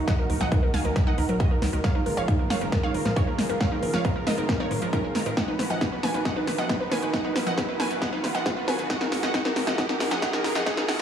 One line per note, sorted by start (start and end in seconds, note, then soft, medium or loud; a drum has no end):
0.00 1.81 A#2 medium
0.00 1.81 D#3 medium
0.00 1.81 F#3 medium
0.00 1.81 D#4 medium
0.00 1.81 F#4 medium
0.00 riser medium
0.07 0.12 D#3 medium
0.07 0.16 D#5 medium
0.07 0.16 F#5 loud
0.07 kick loud
0.07 snare medium
0.07 closed hi-hat medium
0.19 0.23 D#4 loud
0.19 0.27 A#4 medium
0.30 0.38 D#2 loud
0.30 0.34 D#3 medium
0.30 0.38 A#4 medium
0.30 open hi-hat loud
0.41 0.49 D#2 medium
0.41 0.45 F3 loud
0.41 0.49 D#5 medium
0.41 0.49 F#5 loud
0.41 snare soft
0.41 closed hi-hat medium
0.52 0.58 D#4 loud
0.52 0.60 A#4 medium
0.52 kick loud
0.52 closed hi-hat medium
0.63 0.71 A#4 medium
0.74 0.82 D#2 medium
0.74 0.78 D#3 medium
0.74 0.82 F5 medium
0.74 0.82 G#5 medium
0.74 snare medium
0.74 open hi-hat loud
0.85 0.93 D#2 medium
0.85 0.89 D#3 loud
0.85 0.93 A#4 medium
0.85 closed hi-hat medium
0.96 1.00 D#3 medium
0.96 1.04 A#4 medium
0.96 kick loud
0.96 snare medium
0.96 closed hi-hat medium
1.07 1.11 D#4 medium
1.07 1.15 D#5 medium
1.07 1.15 F#5 medium
1.18 1.26 D#2 medium
1.18 1.22 D#3 medium
1.18 1.26 A#4 medium
1.18 open hi-hat loud
1.29 1.37 D#1 medium
1.29 1.36 F#3 loud
1.29 1.37 A#4 medium
1.29 closed hi-hat medium
1.40 1.47 D#4 loud
1.40 1.48 F#4 medium
1.40 1.48 D#5 loud
1.40 kick loud
1.40 closed hi-hat medium
1.51 1.59 A#4 medium
1.62 1.70 D#2 medium
1.62 1.66 D#3 medium
1.62 1.71 A#4 medium
1.62 snare medium
1.62 open hi-hat loud
1.73 1.82 D#2 medium
1.73 1.77 D#3 loud
1.73 1.81 A#4 medium
1.73 closed hi-hat medium
1.84 5.34 C#3 medium
1.84 1.89 D#3 medium
1.84 5.34 F3 medium
1.84 5.34 G#3 medium
1.84 5.34 A#3 medium
1.84 5.34 F4 medium
1.84 1.92 C#5 medium
1.84 1.92 F5 loud
1.84 kick loud
1.84 snare medium
1.84 closed hi-hat medium
1.95 2.00 D#4 loud
1.95 2.03 A#4 medium
2.06 2.15 A#1 medium
2.06 2.11 D#3 medium
2.06 2.15 A#4 medium
2.06 open hi-hat loud
2.17 2.26 A#1 medium
2.17 2.22 F3 loud
2.17 2.26 C#5 medium
2.17 2.26 F5 medium
2.17 closed hi-hat medium
2.28 2.35 D#4 loud
2.28 2.37 A#4 medium
2.28 kick loud
2.28 closed hi-hat medium
2.39 2.48 A#4 medium
2.50 2.59 A#1 medium
2.50 2.55 D#3 medium
2.50 2.59 C#5 medium
2.50 2.59 F5 medium
2.50 snare medium
2.50 open hi-hat loud
2.61 2.70 A#1 medium
2.61 2.66 D#3 loud
2.61 2.70 A#4 medium
2.61 closed hi-hat medium
2.72 2.77 D#3 medium
2.72 2.81 A#4 medium
2.72 kick loud
2.72 snare medium
2.72 closed hi-hat medium
2.83 2.88 D#4 loud
2.83 2.92 C#5 medium
2.83 2.92 F5 loud
2.94 3.03 A#1 medium
2.94 2.99 D#3 medium
2.94 3.03 A#4 medium
2.94 open hi-hat loud
3.05 3.14 A#2 medium
3.05 3.12 F3 loud
3.05 3.14 A#4 medium
3.05 snare medium
3.05 closed hi-hat medium
3.16 3.23 D#4 loud
3.16 3.25 A#4 medium
3.16 3.25 C#5 loud
3.16 kick loud
3.16 closed hi-hat medium
3.27 3.36 A#4 medium
3.38 3.47 A#1 medium
3.38 3.43 D#3 medium
3.38 3.47 A#4 medium
3.38 snare medium
3.38 open hi-hat loud
3.49 3.58 A#1 medium
3.49 3.54 D#3 loud
3.49 3.58 A#4 medium
3.49 closed hi-hat medium
3.60 3.65 D#3 medium
3.60 3.69 C#5 medium
3.60 3.69 F5 loud
3.60 kick loud
3.60 snare medium
3.60 closed hi-hat medium
3.72 3.76 D#4 loud
3.72 3.80 A#4 medium
3.83 3.91 A#1 medium
3.83 3.87 D#3 medium
3.83 3.91 A#4 medium
3.83 open hi-hat loud
3.94 4.02 A#1 medium
3.94 3.98 F3 loud
3.94 4.02 C#5 medium
3.94 4.02 F5 loud
3.94 snare medium
3.94 closed hi-hat medium
4.05 4.11 D#4 loud
4.05 4.13 A#4 medium
4.05 kick loud
4.05 closed hi-hat medium
4.16 4.24 A#4 medium
4.27 4.35 A#1 medium
4.27 4.31 D#3 medium
4.27 4.35 A#4 medium
4.27 4.35 D#5 medium
4.27 snare medium
4.27 open hi-hat loud
4.38 4.46 A#1 medium
4.38 4.42 D#3 loud
4.38 4.46 A#4 medium
4.38 closed hi-hat medium
4.49 4.53 D#3 medium
4.49 4.57 A#4 medium
4.49 kick loud
4.49 snare medium
4.49 closed hi-hat medium
4.60 4.64 D#4 loud
4.60 4.68 A#4 medium
4.60 4.68 C#5 medium
4.71 4.79 A#2 medium
4.71 4.75 D#3 medium
4.71 4.79 A#4 medium
4.71 open hi-hat loud
4.82 4.90 A#1 medium
4.82 4.89 F3 loud
4.82 4.90 A#4 medium
4.82 closed hi-hat medium
4.93 5.02 C#4 medium
4.93 5.00 D#4 loud
4.93 5.02 A#4 loud
4.93 kick loud
4.93 closed hi-hat medium
5.04 5.13 A#4 medium
5.15 5.23 A#1 medium
5.15 5.19 D#3 medium
5.15 5.24 A#4 medium
5.15 snare medium
5.15 open hi-hat loud
5.26 5.34 A#2 medium
5.26 5.30 D#3 loud
5.26 5.35 A#4 medium
5.26 closed hi-hat medium
5.37 8.87 D#3 medium
5.37 11.02 F#3 medium
5.37 8.86 A#3 medium
5.37 8.87 B3 medium
5.37 11.02 F#4 medium
5.37 5.46 D#5 medium
5.37 5.46 F#5 medium
5.37 kick loud
5.37 snare medium
5.37 closed hi-hat medium
5.48 5.52 D#4 medium
5.48 5.57 B4 medium
5.59 5.68 B1 medium
5.59 5.63 D#3 medium
5.59 5.68 B4 medium
5.59 snare medium
5.59 open hi-hat loud
5.70 5.79 B1 medium
5.70 5.75 F3 loud
5.70 5.79 D#5 medium
5.70 5.79 F#5 medium
5.70 closed hi-hat medium
5.81 5.88 D#4 loud
5.81 5.90 B4 medium
5.81 kick loud
5.81 snare medium
5.81 closed hi-hat medium
5.92 6.01 B4 medium
6.03 6.12 B1 medium
6.03 6.08 D#3 medium
6.03 6.12 B4 medium
6.03 6.12 G#5 medium
6.03 snare medium
6.03 open hi-hat loud
6.14 6.23 B1 medium
6.14 6.19 D#3 medium
6.14 6.23 B4 medium
6.14 closed hi-hat medium
6.25 6.30 D#3 medium
6.25 6.34 D#5 medium
6.25 6.34 F#5 medium
6.25 kick loud
6.25 snare medium
6.25 closed hi-hat medium
6.36 6.41 D#4 medium
6.36 6.45 B4 medium
6.47 6.56 B1 loud
6.47 6.52 D#3 medium
6.47 6.56 B4 medium
6.47 snare medium
6.47 open hi-hat loud
6.58 6.67 F#1 medium
6.58 6.63 F3 loud
6.58 6.67 D#5 medium
6.58 6.67 F#5 medium
6.58 closed hi-hat medium
6.69 6.76 D#4 medium
6.69 6.78 B4 medium
6.69 kick loud
6.69 snare medium
6.69 closed hi-hat medium
6.80 6.89 B4 medium
6.91 7.00 B1 medium
6.91 6.96 D#3 medium
6.91 7.00 B4 medium
6.91 7.00 G#5 medium
6.91 snare medium
6.91 open hi-hat loud
7.02 7.11 B1 medium
7.02 7.07 D#3 medium
7.02 7.11 B4 medium
7.02 closed hi-hat medium
7.13 7.18 D#3 medium
7.13 7.22 D#5 medium
7.13 7.22 F#5 loud
7.13 kick loud
7.13 snare medium
7.13 closed hi-hat medium
7.25 7.29 D#4 loud
7.25 7.33 B4 medium
7.36 7.44 B1 medium
7.36 7.40 D#3 medium
7.36 7.44 B4 medium
7.36 snare medium
7.36 open hi-hat loud
7.47 7.55 B1 medium
7.47 7.51 F3 loud
7.47 7.55 D#5 medium
7.47 7.55 F#5 loud
7.47 closed hi-hat medium
7.58 7.64 D#4 medium
7.58 7.66 B4 medium
7.58 kick loud
7.58 snare medium
7.58 closed hi-hat medium
7.69 7.77 B4 medium
7.80 7.88 B1 medium
7.80 7.84 D#3 medium
7.80 7.88 B4 medium
7.80 7.88 G#5 medium
7.80 snare medium
7.80 open hi-hat loud
7.91 7.99 B1 medium
7.91 7.95 D#3 loud
7.91 7.99 B4 medium
7.91 closed hi-hat medium
8.02 8.06 D#3 medium
8.02 8.10 D#5 medium
8.02 8.10 F#5 medium
8.02 kick loud
8.02 snare medium
8.02 closed hi-hat medium
8.13 8.17 D#4 loud
8.13 8.21 B4 medium
8.24 8.32 B1 loud
8.24 8.28 D#3 medium
8.24 8.32 B4 medium
8.24 snare medium
8.24 open hi-hat loud
8.35 8.43 F#1 medium
8.35 8.39 F3 loud
8.35 8.43 D#5 medium
8.35 8.43 F#5 medium
8.35 closed hi-hat medium
8.46 8.52 D#4 loud
8.46 8.54 B4 medium
8.46 kick loud
8.46 snare medium
8.46 closed hi-hat medium
8.57 8.65 B4 medium
8.68 8.76 B1 medium
8.68 8.72 D#3 medium
8.68 8.76 B4 medium
8.68 8.76 G#5 loud
8.68 snare medium
8.68 open hi-hat loud
8.79 8.87 B1 medium
8.79 8.83 D#3 loud
8.79 8.87 B4 medium
8.79 closed hi-hat medium
8.90 11.02 C#3 medium
8.90 8.94 D#3 medium
8.90 11.02 G#3 medium
8.90 11.02 A#3 medium
8.90 8.98 D#5 medium
8.90 8.98 F#5 loud
8.90 kick loud
8.90 snare loud
8.90 closed hi-hat medium
9.01 9.05 D#4 loud
9.01 9.09 A#4 medium
9.01 snare medium
9.12 9.20 F#2 medium
9.12 9.16 D#3 medium
9.12 9.20 A#4 medium
9.12 snare loud
9.12 open hi-hat loud
9.23 9.31 F#2 medium
9.23 9.28 F3 loud
9.23 9.32 D#5 medium
9.23 9.32 F#5 loud
9.23 snare medium
9.23 closed hi-hat medium
9.34 9.38 D#3 medium
9.34 9.43 D#5 medium
9.34 9.43 F#5 medium
9.34 kick loud
9.34 snare medium
9.34 closed hi-hat medium
9.45 9.50 D#4 loud
9.45 9.54 A#4 medium
9.45 snare medium
9.56 9.65 F#2 medium
9.56 9.61 D#3 medium
9.56 9.65 A#4 medium
9.56 snare medium
9.56 open hi-hat loud
9.67 9.76 F#2 medium
9.67 9.72 F3 loud
9.67 9.76 D#5 medium
9.67 9.76 F#5 loud
9.67 snare medium
9.67 closed hi-hat medium
9.78 9.83 D#3 medium
9.78 9.87 D#5 medium
9.78 9.87 F#5 loud
9.78 kick loud
9.78 snare medium
9.78 closed hi-hat medium
9.89 9.94 D#4 loud
9.89 9.98 A#4 medium
9.89 snare medium
10.00 10.09 F#2 medium
10.00 10.05 D#3 medium
10.00 10.09 A#4 medium
10.00 snare loud
10.00 open hi-hat loud
10.11 10.20 F#1 medium
10.11 10.16 F3 loud
10.11 10.20 D#5 medium
10.11 10.20 F#5 medium
10.11 snare medium
10.11 closed hi-hat medium
10.22 10.27 D#3 medium
10.22 10.31 D#5 medium
10.22 10.31 F#5 loud
10.22 kick loud
10.22 snare loud
10.22 closed hi-hat medium
10.33 10.38 D#4 loud
10.33 10.42 A#4 medium
10.33 snare medium
10.44 10.53 F#2 medium
10.44 10.49 D#3 medium
10.44 10.53 A#4 medium
10.44 snare loud
10.44 open hi-hat loud
10.55 10.64 F#2 medium
10.55 10.60 F3 loud
10.55 10.64 D#5 medium
10.55 10.64 F#5 loud
10.55 snare medium
10.55 closed hi-hat medium
10.66 10.71 D#3 medium
10.66 10.75 D#5 medium
10.66 10.75 F#5 loud
10.66 kick loud
10.66 snare loud
10.66 closed hi-hat medium
10.77 10.82 D#4 loud
10.77 10.86 A#4 medium
10.77 snare medium
10.88 10.97 F#2 medium
10.88 10.93 D#3 medium
10.88 10.97 D#5 medium
10.88 10.97 F#5 loud
10.88 snare loud
10.88 open hi-hat loud